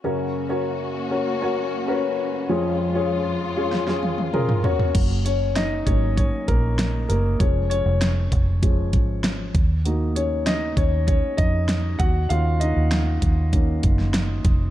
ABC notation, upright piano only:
X:1
M:4/4
L:1/16
Q:1/4=98
K:F#
V:1 name="Upright piano"
[CFAc]3 [CFAc]3 z [CFAc]2 [CFAc]3 [CFABc]3 z | [CEGc]3 [CEGc]3 z [CEGc]2 [CEGc]3 [CEGA]2 [CFAc]2 | z2 [Cc]2 [Dd]2 c2 [Cc]2 [A,A]4 [A,A]2 | c2 [Cc]12 z2 |
z2 [Cc]2 [Dd]2 [Cc]2 [Cc]2 [Dd]4 [Ff]2 | [Ee]2 [Dd]12 z2 |]
V:2 name="Upright piano"
[F,,C,]16 | [E,,E,]12- [E,,E,]2 z2 | [F,A,C]2 z4 [F,A,C]2 z8 | [E,G,C]2 z6 [E,G,C]2 z6 |
[A,DF]12- [A,DF]2 z2 | [D,A,C]2 z6 [D,A,C]2 z6 |]